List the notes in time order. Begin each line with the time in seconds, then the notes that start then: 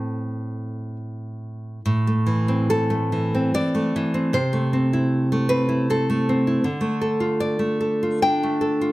Already playing: A2 A3 C4 A4
1.86 A2
2.07 A3
2.27 E3
2.48 C4
2.70 A4
2.90 A3
3.12 E3
3.35 C4
3.54 E3 D5
3.75 A3
3.96 E3
4.14 C4
4.33 C3 C5
4.53 A3
4.73 C4
4.93 E4
5.32 A3
5.49 C4 B4
5.69 E4
5.90 C4 A4
6.10 A3
6.29 C4
6.47 E4
6.64 D3
6.81 A3
7.01 A4
7.20 F4
7.40 D5
7.59 A3
7.81 A4
8.03 F4
8.22 D4 G5
8.43 A3
8.61 A4
8.81 F4